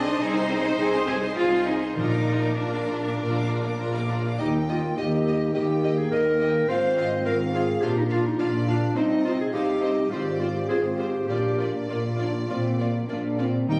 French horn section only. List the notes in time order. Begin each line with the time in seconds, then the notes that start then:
0.78 C4 G#4
1.97 A#3 F4
3.19 A#3 F4
4.38 A#3 D#4
6.69 C4 F4
7.83 D4
8.96 C4 D#4
9.54 C4 D#4
10.10 C4 F4
10.71 C4 F4
11.30 A#3 D4
11.90 A#3
12.20 D4
12.50 C4
12.79 A#3
13.07 D4
13.39 C4
13.68 A#3 D#4